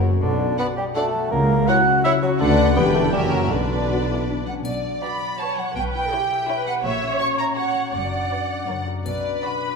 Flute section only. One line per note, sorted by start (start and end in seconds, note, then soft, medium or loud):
0.21 0.56 D5 medium
0.58 0.64 B5 medium
0.77 0.83 G5 medium
0.96 1.31 A5 medium
1.32 1.67 A#5 medium
1.68 2.04 F#6 medium
2.04 2.10 E6 medium
2.23 2.29 F#5 medium
2.40 2.76 D5 medium
2.78 2.84 B5 medium
2.96 3.14 A5 medium
3.15 3.32 G5 medium
3.34 3.52 F#5 medium
3.52 4.22 D5 medium
4.47 4.53 F#5 medium
4.66 5.02 D5 medium
5.04 5.40 B5 medium
5.40 5.58 A5 medium
5.59 5.76 F#5 medium
5.77 5.83 G5 medium
5.94 6.65 G5 medium
6.67 6.84 F#5 medium
6.85 7.21 E5 medium
7.20 7.38 C#6 medium
7.38 7.56 A#5 medium
7.55 7.92 F#5 medium
7.93 8.85 F#5 medium
9.06 9.40 D5 medium
9.42 9.76 B5 medium